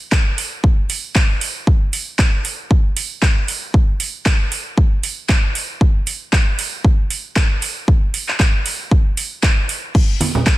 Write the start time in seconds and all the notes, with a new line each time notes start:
0.12 kick, clap
0.38 open hi-hat
0.64 kick
0.90 open hi-hat
1.15 kick, clap
1.41 open hi-hat
1.67 kick
1.93 open hi-hat
2.19 kick, clap
2.45 open hi-hat
2.71 kick
2.97 open hi-hat
3.22 kick, clap
3.48 open hi-hat
3.74 kick
4.00 open hi-hat
4.26 kick, clap
4.52 open hi-hat
4.78 kick
5.03 open hi-hat
5.29 kick, clap
5.55 open hi-hat
5.81 kick
6.07 open hi-hat
6.33 kick, clap
6.59 open hi-hat
6.85 kick
7.10 open hi-hat
7.36 kick, clap
7.62 open hi-hat
7.88 kick
8.14 open hi-hat
8.28 clap
8.40 kick, clap
8.66 open hi-hat
8.91 kick
9.17 open hi-hat
9.43 kick, clap
9.69 open hi-hat
9.95 kick, crash
10.20 open hi-hat, high conga
10.35 low conga
10.47 kick, clap